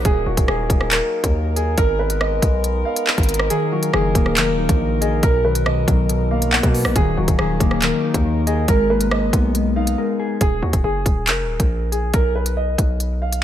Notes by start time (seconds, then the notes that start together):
Already playing: F#3 D#4
0.05 D#1 A#3 G#4 A#4, kick, closed hi-hat
0.26 D#1 F#4
0.37 D#1, kick, closed hi-hat
0.48 D#1 G#4, cross-stick
0.70 D#1, kick, closed hi-hat
0.81 cross-stick
0.91 A#4, clap, closed hi-hat
1.24 D#2, kick, closed hi-hat
1.56 G#4, closed hi-hat
1.78 G#1 G#3 B3 A#4, kick, closed hi-hat
1.99 B4
2.10 closed hi-hat
2.21 D#5, cross-stick
2.42 B1, kick, closed hi-hat
2.64 closed hi-hat
2.85 F5
2.96 closed hi-hat
3.07 A#4, clap
3.18 G#1, kick, closed hi-hat
3.23 closed hi-hat
3.29 closed hi-hat
3.34 closed hi-hat
3.39 cross-stick
3.50 D#3 F#3 A#3 G#4, closed hi-hat
3.72 F#3 F#4
3.83 closed hi-hat
3.94 F#1 D#3 G#4, cross-stick
4.15 D#1 A#3, kick, closed hi-hat
4.26 cross-stick
4.36 F1 D#3 A#4, clap, closed hi-hat
4.53 D#1
4.58 D#4
4.69 A#1, kick, closed hi-hat
4.80 D#3
5.01 G#4 D#5, closed hi-hat
5.23 B1 B2 A#4, kick, closed hi-hat
5.45 D#3 B4
5.55 closed hi-hat
5.66 B2 D#5, cross-stick
5.88 B1 F#3, kick, closed hi-hat
6.09 B2, closed hi-hat
6.31 A#3 F5
6.42 closed hi-hat
6.52 B2 F#5, clap
6.63 B2, kick, closed hi-hat
6.74 B3, open hi-hat
6.85 A#1, cross-stick
6.96 D#1 D#3 A#3 D#4 G#4 A#4, kick, closed hi-hat
7.17 D#1 F#3 F#4
7.28 D#1, kick, closed hi-hat
7.39 D#1 D#3 G#4, cross-stick
7.60 D#1 A#3, kick, closed hi-hat
7.71 cross-stick
7.82 D#3 A#4, clap, closed hi-hat
8.04 D#4
8.14 D#2, kick, closed hi-hat
8.25 D#3
8.47 G#4 D#5, closed hi-hat
8.68 G#1 B2 G#3 A#4, kick, closed hi-hat
8.90 A#3 B4
9.01 closed hi-hat
9.11 G#3 D#5, cross-stick
9.33 B1 B3, kick, closed hi-hat
9.55 G#3, closed hi-hat
9.76 D#4 F5
9.87 closed hi-hat
9.98 G#3 A#4
10.19 G#4
10.41 D#1 G#4, kick, closed hi-hat
10.62 D#2 F#4
10.73 D#1, kick, closed hi-hat
10.84 F#1 G#4
11.06 D#1, kick, closed hi-hat
11.27 F1 A#4, clap, closed hi-hat
11.43 D#1
11.60 A#1, kick, closed hi-hat
11.92 G#4, closed hi-hat
12.14 B1 A#4, kick, closed hi-hat
12.35 B4
12.46 closed hi-hat
12.57 D#5
12.78 B1, kick, closed hi-hat
13.00 closed hi-hat
13.22 F5
13.33 closed hi-hat